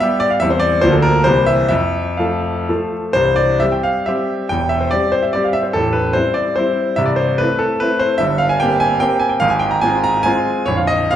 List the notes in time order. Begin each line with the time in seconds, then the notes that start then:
0.00 G3 B3 G4 E5
0.20 D5
0.30 F5
0.40 E2 G3 C4 E4 E5
0.50 C5
0.60 D5
0.81 D2 F3 A#3 F4 C5
0.92 A4
1.02 A#4
1.24 C2 E3 A#3 G4 C5
1.46 E5
1.69 F2 E5
2.17 F3 A3 A4 F5
2.69 F3 A3 A4
3.13 C1 C2 C5
3.36 D5
3.60 G3 C4 G4 E5
3.72 G5
3.83 F5
4.06 G3 C4 G4 E5
4.49 E1 E2 G5
4.69 E5
4.81 C5
4.91 G3 C4 G4 D5
5.12 C5
5.23 E5
5.33 G3 C4 G4 D5
5.44 F5
5.53 E5
5.63 C5
5.73 A0 A1 A4
5.93 B4
6.13 G3 C4 E4 C5
6.34 D5
6.56 G3 C4 E4 C5
6.96 C1 C2 E5
7.06 D5
7.16 C5
7.38 A3 C4 E4 B4
7.59 A4
7.80 A3 C4 E4 B4
7.99 C5
8.18 G1 G2 E5
8.38 F5
8.49 G#5
8.60 A#3 C4 G4 G5
8.80 G#5
9.00 A#3 C4 G4 G5
9.20 G#5
9.29 G5
9.40 G#1 G#2 F5
9.50 G#5
9.59 G5
9.71 A#5
9.81 G#3 C4 F4 G#5
10.04 A#5
10.23 G#3 C4 F4 G#5
10.66 A#0 A#1 C#5
10.77 F5
10.87 D#5
11.11 G3 F5